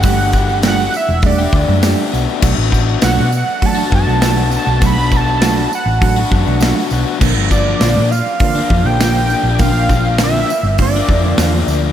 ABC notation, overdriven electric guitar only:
X:1
M:4/4
L:1/16
Q:1/4=100
K:Bm
V:1 name="Overdriven electric guitar"
[A,DG]2 [A,DG] [DG] [A,DG] [DG]3 z [DG] [A,DG]2 [A,DG] [DG] [B,DF] [DF] | [B,DF]2 [B,DF] [DF] [B,DF] [DF]3 z [DF] [B,DF]2 [B,DF] [DF] [B,DF] [DF] | [B,DF]2 [B,DF] [DF] [B,DF] [DF]3 z [DF] [B,DF]2 [B,DF] [DF] [B,DF] [DF] | [=F,_B,D]2 [F,B,D] [B,D] [F,B,D] [B,D]3 z [B,D] [F,B,D]2 [F,B,D] [B,D] [F,B,D] [B,D] |
[=F,_B,D]2 [F,B,D] [B,D] [F,B,D] [B,D]3 z [B,D] [F,B,D]2 [F,B,D] [B,D] [F,B,D] [B,D] |]